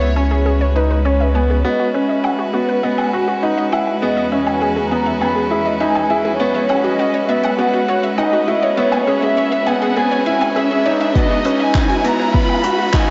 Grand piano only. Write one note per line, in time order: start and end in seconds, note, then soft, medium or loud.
0.16 0.58 C#4 medium
0.75 0.97 D#4 medium
1.05 1.26 C#4 medium
1.35 1.56 B3 medium
1.65 1.86 B3 medium
1.94 2.37 C#4 medium
2.54 2.75 B3 medium
2.84 3.05 B3 medium
3.13 3.34 F#4 medium
3.43 3.64 D#4 medium
3.73 3.94 E4 medium
4.02 4.24 B3 medium
4.32 4.74 C#4 medium
4.91 5.13 B3 medium
5.21 5.42 B3 medium
5.51 5.72 E4 medium
5.80 6.02 D#4 medium
6.10 6.31 E4 medium
6.40 6.61 B3 medium
6.70 7.12 C#4 medium
7.29 7.50 B3 medium
7.59 7.80 B3 medium
7.89 8.10 F#4 medium
8.18 8.39 D#4 medium
8.48 8.69 E4 medium
8.77 8.99 B3 medium
9.07 9.50 C#4 medium
9.67 9.88 B3 medium
9.96 10.18 B3 medium
10.26 10.47 E4 medium
10.56 10.77 C#4 medium
10.86 11.07 D#4 medium
11.15 11.37 B3 medium
11.45 11.87 C#4 medium
12.04 12.25 B3 medium
12.34 12.55 B3 medium
12.64 12.85 F#4 medium
12.93 13.10 D#4 medium